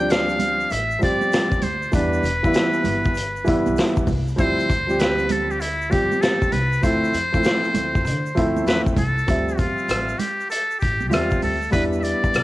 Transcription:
Already playing: upright bass D2, upright piano F3 G3, muted trumpet G5
0.00 upright piano C4 D4
0.10 muted trumpet F5, snare, closed hi-hat, shaker
0.29 shaker
0.39 closed hi-hat, high conga, low conga, shaker
0.60 shaker
0.70 upright bass A1, muted trumpet E5, closed hi-hat, shaker
0.91 shaker
0.99 upright piano F3 G3 C4 G4, muted trumpet D5, kick, closed hi-hat, shaker
1.21 high conga, shaker
1.32 snare, closed hi-hat, shaker
1.52 kick, shaker
1.62 upright bass D2, muted trumpet C5, closed hi-hat, low conga, shaker
1.82 shaker
1.92 upright bass E2, upright piano E3 G3 B3 D4, muted trumpet B4, kick, closed hi-hat, shaker
2.13 shaker
2.23 upright bass E1, closed hi-hat, shaker
2.43 upright piano E3 G3 B3 E4, kick, shaker
2.53 snare, closed hi-hat, shaker
2.73 shaker
2.84 upright bass G1, closed hi-hat, high conga, low conga, shaker
3.05 kick, shaker
3.15 closed hi-hat, shaker
3.36 shaker
3.44 upright piano E3 G3 B3 E4, kick, closed hi-hat, shaker
3.66 upright bass B1, high conga, shaker
3.76 snare, closed hi-hat, shaker
3.96 kick, shaker
4.07 upright bass C2, kick, open hi-hat, low conga, shaker
4.28 shaker
4.36 upright bass D2, upright piano F3 G3 C4 E4, muted trumpet C5, kick, closed hi-hat, shaker
4.59 shaker
4.69 kick, closed hi-hat, shaker
4.87 upright piano F3 G3 C4 G4, shaker
4.99 muted trumpet B4, snare, closed hi-hat, shaker
5.19 shaker
5.29 muted trumpet A4, closed hi-hat, high conga, low conga, shaker
5.51 muted trumpet G4, shaker
5.60 muted trumpet E4, closed hi-hat, shaker
5.82 shaker
5.89 upright piano F3 G3 C4 G4, muted trumpet G4, kick, closed hi-hat, shaker
6.12 high conga, shaker
6.21 muted trumpet A4, snare, closed hi-hat, shaker
6.42 kick, shaker
6.52 upright bass C2, muted trumpet B4, closed hi-hat, low conga, shaker
6.73 shaker
6.81 upright bass D2, upright piano F3 A3 C4 E4, muted trumpet C5, kick, closed hi-hat, shaker
7.04 shaker
7.13 upright bass F2, closed hi-hat, shaker
7.32 upright piano F3 A3 C4 E4, kick, shaker
7.44 snare, closed hi-hat, shaker
7.64 shaker
7.74 upright bass D2, closed hi-hat, high conga, low conga, shaker
7.95 kick, shaker
8.05 upright bass D3, closed hi-hat, shaker
8.26 shaker
8.35 upright bass D2, upright piano F3 A3 C4 E4, kick, closed hi-hat, shaker
8.57 high conga, shaker
8.66 upright bass E2, muted trumpet B4, snare, closed hi-hat, shaker
8.86 kick, shaker
8.96 upright bass C2, muted trumpet A4, kick, closed hi-hat, low conga, shaker
9.18 shaker
9.27 upright bass D2, upright piano F3 G3 C4 E5, kick, closed hi-hat, shaker
9.49 shaker
9.57 muted trumpet F4, kick, closed hi-hat, high conga, shaker
9.78 shaker
9.88 upright bass A1, cross-stick, closed hi-hat, shaker
10.08 shaker
10.19 muted trumpet G4, closed hi-hat, low conga, shaker
10.40 shaker
10.50 muted trumpet A4, closed hi-hat, shaker
10.71 shaker
10.79 upright bass A1, muted trumpet G4, kick, closed hi-hat, shaker
11.00 high conga, shaker
11.08 upright bass E2, upright piano G3 C4 F4, muted trumpet G4, low conga, shaker
11.13 muted trumpet F4, upright piano E5, cross-stick, closed hi-hat
11.31 kick, shaker
11.42 upright bass D2, muted trumpet A4, open hi-hat, low conga, shaker
11.62 shaker
11.71 upright bass E2, upright piano G3 B3 D4 E4, muted trumpet B4, kick, closed hi-hat, shaker
11.93 shaker
11.99 muted trumpet D5 E5, high conga, shaker
12.04 closed hi-hat
12.24 kick, shaker
12.34 upright bass B1, cross-stick, closed hi-hat, shaker

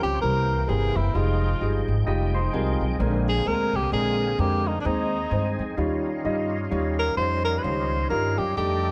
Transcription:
Already playing: tonewheel organ F3 C4 C#4 G5
0.03 upright bass C#2, tenor saxophone G4
0.21 upright bass C2, grand piano C3 G3 C4 E4 A#4, tonewheel organ E3 A#3, tenor saxophone A#4
0.64 grand piano G3, tenor saxophone A#4
0.68 upright bass G1, grand piano C4 E4 A#4, tenor saxophone G#4
0.96 upright bass F#1, tenor saxophone E4
1.14 upright bass F1, tonewheel organ F3 G#3 D#4, grand piano G3 D#4 F4 G#4, tenor saxophone F4
1.61 upright bass G1, grand piano G3 D#4 F4 G#4
1.88 upright bass G#1
2.07 upright bass F1, grand piano G3 D#4 F4 G4, clean electric guitar G4 D#5
2.35 clean electric guitar D#4 C5
2.53 upright bass C2, grand piano G3 D#4 F4 A#4, clean electric guitar C4 G#4
2.81 upright bass B1
2.99 upright bass A#1, grand piano A#2 G#3 C4 D4 A#4, tonewheel organ D3 A#3 C4 G#4
3.28 tenor saxophone G#4
3.45 upright bass D2, grand piano G#3 C4 D4 A#4, tenor saxophone A#4
3.73 upright bass C2, tenor saxophone G4
3.92 upright bass A#1, grand piano G#3 C4 D4 A#4, tenor saxophone G#4
4.39 upright bass F2, grand piano G#3 C4 D4 A#4, tenor saxophone G4
4.67 tenor saxophone D#4
4.81 tenor saxophone D4
4.85 upright bass D#2, grand piano D#3 G#3 C4 D#4 C5, tonewheel organ G#3 D#4, tenor saxophone D#4
5.31 upright bass G2, grand piano G#3 C4 D#4 C5
5.59 upright bass F2
5.77 upright bass D#2, grand piano D#3 G3 D#4 F4 C#5, tonewheel organ G3 C#4 F4
6.24 upright bass G2, grand piano G3 D#4 F4 D#5
6.70 upright bass D#2, grand piano G3 D#4 F4 C#5
6.99 tenor saxophone A#4
7.17 upright bass F2, grand piano G3 D#4 F4 C5, tenor saxophone C5
7.44 tenor saxophone A#4
7.58 tenor saxophone B4
7.63 upright bass C#2, grand piano D#3 G3 D#4 F4 C#5, tenor saxophone C5
8.10 upright bass G2, grand piano G3 D#4 F4 A#4, tenor saxophone A#4
8.38 upright bass F#2, tenor saxophone G4
8.56 upright bass F2, grand piano G3 D4 D#4 A4, tonewheel organ A3 D4 G4, tenor saxophone G4

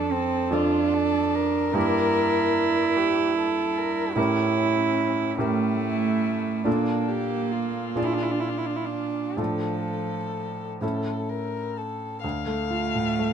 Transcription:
Already playing: grand piano F2 F3 D4 A4, cello D4, violin A4
0.12 cello C4
0.50 grand piano F2 F3 D4 A4, cello D4, violin F4
0.93 violin A4
1.34 violin A#4
1.73 grand piano G2 A#3 G4 A#4, cello E4
2.96 violin G4
3.37 violin A4
3.77 violin A#4
4.15 grand piano A2 C#4 G4 A#4, violin C#4, cello E4
5.38 grand piano A2 C#4 G4 A#4, cello A3, violin E4
6.64 grand piano A#2 D4 F4 A4, cello A#3, violin D4
7.08 violin G4
7.51 violin F4
7.95 grand piano A#2 D4 F4 G#4, cello D4
8.05 cello E4
8.14 cello D4
8.22 cello E4
8.31 cello D4
8.40 cello E4
8.49 cello D4
8.58 cello E4
8.66 cello D4
8.76 cello E4
8.85 cello D4
9.37 grand piano A2 D4 F4 A4, cello F3, violin A4
10.81 grand piano A2 C#4 E4 A4, violin A4
11.29 violin A#4
11.77 violin A4
12.23 grand piano D2, violin F5
12.47 grand piano A3
12.69 cello A3, grand piano F4
12.95 grand piano A2
13.19 grand piano A3

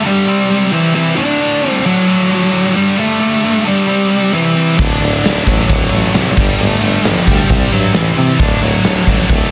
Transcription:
0.05 distorted electric guitar G2 D3 G3, lead electric guitar G3 G4
0.27 distorted electric guitar C3 G3 C4
0.50 distorted electric guitar C3 G3 C4
0.72 distorted electric guitar C3 G3 C4, lead electric guitar E3 E4
0.95 distorted electric guitar C3 G3 C4, lead electric guitar E3 E4
1.16 distorted electric guitar D2 A2 D3, lead electric guitar D4 D5
1.39 distorted electric guitar D2 A2 D3
1.62 distorted electric guitar D2 A2 D3
1.69 lead electric guitar C4
1.85 distorted electric guitar D2 A2 D3, lead electric guitar F#3 F#4
2.07 distorted electric guitar D2 A2 D3
2.29 distorted electric guitar D2 A2 D3
2.51 distorted electric guitar D2 A2 D3
2.74 distorted electric guitar G2 D3 G3, lead electric guitar G3 G4
2.97 distorted electric guitar G2 D3 G3, lead electric guitar A3 A4
3.20 distorted electric guitar G2 D3 G3
3.42 distorted electric guitar G2 D3 G3
3.66 distorted electric guitar G2 D3 G3, lead electric guitar G3 G4
3.87 distorted electric guitar C3 G3 C4
4.10 distorted electric guitar C3 G3 C4
4.32 distorted electric guitar C3 G3 C4, lead electric guitar E3 E4
4.56 distorted electric guitar C3 G3 C4
4.78 tuba D1, distorted electric guitar D2 A2 D3, lead electric guitar D4 D5, kick, crash
4.91 closed hi-hat
5.01 tuba D1, distorted electric guitar D2 A2 D3, closed hi-hat
5.14 closed hi-hat
5.23 tuba D1, distorted electric guitar D2 A2 D3, snare, closed hi-hat
5.36 closed hi-hat
5.47 tuba A1, distorted electric guitar D2 A2 D3, lead electric guitar F#3 F#4, kick, closed hi-hat
5.58 snare, closed hi-hat
5.69 tuba D1, distorted electric guitar D2 A2 D3, kick, closed hi-hat
5.91 tuba A1, distorted electric guitar D2 A2 D3, closed hi-hat
6.04 closed hi-hat
6.13 tuba C2, distorted electric guitar D2 A2 D3, snare, closed hi-hat
6.36 tuba G1, distorted electric guitar G2 D3 G3, lead electric guitar G3 G4, kick, crash
6.59 tuba G1, distorted electric guitar G2 D3 G3, lead electric guitar A3 A4
6.72 closed hi-hat
6.81 tuba G1, distorted electric guitar G2 D3 G3, closed hi-hat
7.04 tuba G1, distorted electric guitar G2 D3 G3, lead electric guitar G4, snare, closed hi-hat
7.27 tuba D2, distorted electric guitar G2 D3 G3, lead electric guitar G3 G4, kick, closed hi-hat
7.49 tuba C2, distorted electric guitar C3 G3 C4, kick, closed hi-hat
7.61 closed hi-hat
7.71 tuba G2, distorted electric guitar C3 G3 C4, lead electric guitar F#3 F#4, closed hi-hat
7.94 tuba A1, distorted electric guitar C3 G3 C4, lead electric guitar E3 E4, snare, closed hi-hat
8.17 distorted electric guitar C3 G3 C4, tuba C3, closed hi-hat
8.38 tuba D1, distorted electric guitar D2 A2 D3, lead electric guitar D4 D5, kick, closed hi-hat
8.50 closed hi-hat
8.62 tuba D1, distorted electric guitar D2 A2 D3, lead electric guitar F#3 F#4, closed hi-hat
8.74 closed hi-hat
8.84 tuba D1, distorted electric guitar D2 A2 D3, snare, closed hi-hat
8.96 closed hi-hat
9.06 tuba A1, distorted electric guitar D2 A2 D3, kick, closed hi-hat
9.18 snare, closed hi-hat
9.29 tuba D1, distorted electric guitar D2 A2 D3, lead electric guitar A3 A4, kick, closed hi-hat

